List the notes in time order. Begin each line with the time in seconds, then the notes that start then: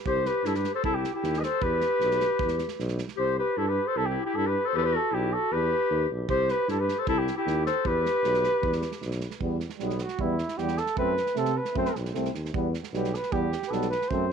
0.06 C2 G4 C5, kick
0.25 G4 B4, snare
0.44 G2 E4 A4, snare
0.55 G4 B4, snare
0.64 snare
0.75 A4 C5
0.83 C2 E4 A4, kick
0.94 E4 G4
1.04 snare
1.14 E4 G4
1.23 D#2, snare
1.33 snare
1.39 B4 D#5, snare
1.44 A4 C5
1.62 E2 G4 B4, kick
1.81 snare
2.01 B1, snare
2.11 snare
2.20 snare
2.39 E2, kick
2.48 snare
2.59 snare
2.68 snare
2.80 B1, snare
2.88 snare
2.98 snare
3.08 snare
3.17 C2 G4 C5
3.38 G4 B4
3.57 G2 E4 A4
3.67 G4 B4
3.87 A4 C5
3.96 C2 E4 A4
4.05 E4 G4
4.25 E4 G4
4.35 G2 E4 A4
4.46 G4 B4
4.65 A4 C5
4.75 E2 G4 A4 B4
4.82 G4 B4 C5
4.92 F#4 A4
5.12 B1 E4 G4
5.32 F#4 A4
5.52 E2 G4 B4
5.90 D#2
6.10 B1
6.29 C2 G4 C5, kick
6.49 G4 B4, snare
6.68 G2 E4 A4, snare
6.79 G4 B4
6.89 snare
6.98 A4 C5
7.07 C2 E4 A4, kick
7.18 E4 G4
7.27 snare
7.37 E4 G4
7.46 D#2, snare
7.66 A4 C5, snare
7.85 E2 G4 B4, kick
8.06 snare
8.24 B1, snare
8.34 snare
8.44 snare
8.63 E2, kick
8.72 snare
8.82 snare
8.92 snare
9.02 B1, snare
9.11 snare
9.20 snare
9.31 snare
9.41 E2 G3 B3, kick
9.60 snare
9.70 snare
9.79 B1 G3 B3, snare
9.84 B3
9.90 snare
9.98 F#4, snare
10.08 snare
10.19 E2 G3 B3 E4, kick
10.38 snare
10.48 snare
10.57 E2 G3 B3 G4, snare
10.68 snare
10.77 A4, snare
10.86 snare
10.97 F#2 A3 C4 B4, kick
11.17 snare
11.26 snare
11.35 C3 A3 C4 A4, snare
11.45 snare
11.57 B4
11.65 snare
11.75 F#2 A3 C4 C5, kick
11.85 snare
11.96 B1, snare
12.05 snare
12.14 C2 A3 C4, snare
12.25 snare
12.34 D#2, snare
12.45 snare
12.54 E2 G3 B3, kick
12.74 snare
12.84 snare
12.93 B1 G3 B3 G4, snare
13.04 snare
13.14 B4, snare
13.23 snare
13.32 E2 G3 B3 G4, kick
13.52 snare
13.62 snare
13.67 A4 B4
13.71 B1 G3 B3, snare
13.82 snare
13.89 B4, snare
14.02 snare
14.09 F#2 A3 C4 C5, kick